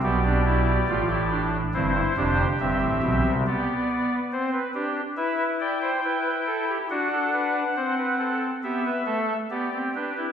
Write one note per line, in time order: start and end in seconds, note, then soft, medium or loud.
0.03 0.77 B1 medium
0.03 0.77 B2 medium
0.03 0.22 B3 medium
0.03 1.50 G4 medium
0.03 1.50 D5 medium
0.24 0.43 D4 medium
0.45 0.72 E4 medium
0.89 1.62 A1 medium
0.89 1.62 A2 medium
0.89 1.07 F4 medium
1.10 1.29 E4 medium
1.31 1.58 D4 medium
1.74 2.01 G1 medium
1.74 2.01 G2 medium
1.74 1.93 C4 medium
1.74 1.92 E4 medium
1.74 2.48 C5 medium
1.94 2.13 E4 medium
2.17 2.44 F1 medium
2.17 2.44 F2 medium
2.17 2.44 D4 medium
2.17 3.28 G4 medium
2.60 2.79 G1 medium
2.60 2.78 G2 medium
2.60 3.34 C4 medium
2.60 3.34 E5 medium
2.82 3.00 A1 medium
2.82 3.00 A2 medium
3.03 3.22 B1 medium
3.03 3.21 B2 medium
3.26 3.44 C2 medium
3.26 3.44 C3 medium
3.47 4.20 B3 medium
3.47 3.73 G4 medium
3.47 3.87 D5 medium
3.89 4.15 D5 medium
4.33 4.59 C4 medium
4.33 4.50 C5 medium
4.52 4.71 B4 medium
4.74 5.01 D4 medium
4.74 5.01 G4 medium
5.17 5.91 E4 medium
5.17 5.44 B4 medium
5.17 5.44 E5 medium
5.60 5.79 D5 medium
5.60 6.72 G5 medium
5.82 6.00 C5 medium
6.04 6.78 E4 medium
6.04 6.30 B4 medium
6.47 6.65 A4 medium
6.69 6.87 G4 medium
6.90 7.64 D4 medium
6.90 7.08 F#4 loud
6.90 8.39 F#5 medium
7.12 7.30 A4 medium
7.33 7.59 B4 medium
7.76 8.51 C4 medium
7.76 7.95 C5 medium
7.98 8.16 B4 medium
8.19 8.46 A4 medium
8.63 8.90 B3 medium
8.63 8.82 G4 medium
8.63 9.38 E5 medium
8.85 9.03 B4 medium
9.06 9.33 A3 medium
9.06 9.33 A4 medium
9.50 9.69 B3 medium
9.50 10.26 G4 medium
9.50 9.78 D5 medium
9.73 9.91 C4 medium
9.95 10.13 D4 medium
9.95 10.22 B4 medium
10.17 10.32 E4 medium